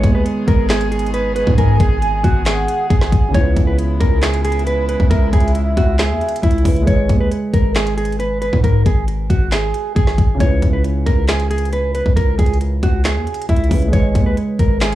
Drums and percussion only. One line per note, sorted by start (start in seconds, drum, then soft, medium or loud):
0.04 kick loud
0.04 closed hi-hat medium
0.26 closed hi-hat medium
0.48 kick loud
0.48 closed hi-hat medium
0.70 snare loud
0.70 clap medium
0.70 closed hi-hat soft
0.81 closed hi-hat medium
0.92 closed hi-hat medium
0.99 closed hi-hat medium
1.07 closed hi-hat medium
1.14 closed hi-hat medium
1.36 closed hi-hat medium
1.47 kick loud
1.58 kick loud
1.58 closed hi-hat medium
1.80 kick loud
1.80 closed hi-hat medium
2.02 closed hi-hat medium
2.24 kick loud
2.24 closed hi-hat medium
2.46 snare loud
2.46 clap medium
2.46 closed hi-hat medium
2.68 closed hi-hat medium
2.90 kick loud
2.90 closed hi-hat medium
3.01 snare medium
3.12 kick loud
3.12 closed hi-hat medium
3.34 kick loud
3.34 closed hi-hat medium
3.56 kick medium
3.56 closed hi-hat medium
3.79 closed hi-hat medium
4.01 kick loud
4.01 closed hi-hat medium
4.22 snare loud
4.22 clap medium
4.22 closed hi-hat soft
4.34 closed hi-hat medium
4.45 closed hi-hat medium
4.52 closed hi-hat medium
4.59 closed hi-hat medium
4.67 closed hi-hat medium
4.89 closed hi-hat medium
5.00 kick loud
5.11 kick loud
5.11 closed hi-hat medium
5.33 kick loud
5.33 closed hi-hat medium
5.40 closed hi-hat medium
5.48 closed hi-hat soft
5.55 closed hi-hat medium
5.77 kick loud
5.77 closed hi-hat medium
5.99 snare loud
5.99 clap medium
5.99 closed hi-hat medium
6.21 closed hi-hat medium
6.29 closed hi-hat medium
6.36 closed hi-hat medium
6.43 kick loud
6.43 closed hi-hat medium
6.51 closed hi-hat medium
6.58 closed hi-hat soft
6.65 kick loud
6.65 closed hi-hat medium
6.65 open hi-hat medium
6.76 closed hi-hat soft
6.87 kick loud
6.87 closed hi-hat medium
7.09 kick medium
7.09 closed hi-hat medium
7.32 closed hi-hat medium
7.54 kick loud
7.54 closed hi-hat medium
7.75 snare loud
7.75 clap medium
7.75 closed hi-hat soft
7.87 closed hi-hat medium
7.98 closed hi-hat medium
8.05 closed hi-hat medium
8.12 closed hi-hat soft
8.20 closed hi-hat medium
8.42 closed hi-hat medium
8.53 kick medium
8.64 kick loud
8.64 closed hi-hat medium
8.86 kick loud
8.86 closed hi-hat medium
9.08 closed hi-hat medium
9.30 kick loud
9.30 closed hi-hat medium
9.52 snare loud
9.52 clap medium
9.52 closed hi-hat medium
9.74 closed hi-hat medium
9.96 kick loud
9.96 closed hi-hat medium
10.07 snare medium
10.18 kick loud
10.18 closed hi-hat medium
10.40 kick loud
10.40 closed hi-hat medium
10.62 kick medium
10.62 closed hi-hat medium
10.84 closed hi-hat medium
11.06 kick medium
11.06 closed hi-hat medium
11.28 snare loud
11.28 clap medium
11.28 closed hi-hat soft
11.40 closed hi-hat medium
11.51 closed hi-hat medium
11.58 closed hi-hat medium
11.65 closed hi-hat medium
11.73 closed hi-hat medium
11.95 closed hi-hat medium
12.06 kick medium
12.17 kick loud
12.17 closed hi-hat medium
12.39 kick medium
12.39 closed hi-hat medium
12.46 closed hi-hat medium
12.53 closed hi-hat soft
12.61 closed hi-hat medium
12.83 kick loud
12.83 closed hi-hat medium
13.05 snare loud
13.05 clap medium
13.05 closed hi-hat medium
13.27 closed hi-hat medium
13.34 closed hi-hat medium
13.42 closed hi-hat medium
13.49 kick loud
13.49 closed hi-hat medium
13.56 closed hi-hat medium
13.64 closed hi-hat soft
13.71 kick loud
13.71 closed hi-hat medium
13.71 open hi-hat medium
13.82 closed hi-hat soft
13.93 kick loud
13.93 closed hi-hat medium
14.15 kick medium
14.15 closed hi-hat medium
14.37 closed hi-hat medium
14.59 kick loud
14.59 closed hi-hat medium
14.81 snare loud
14.81 clap medium
14.81 closed hi-hat soft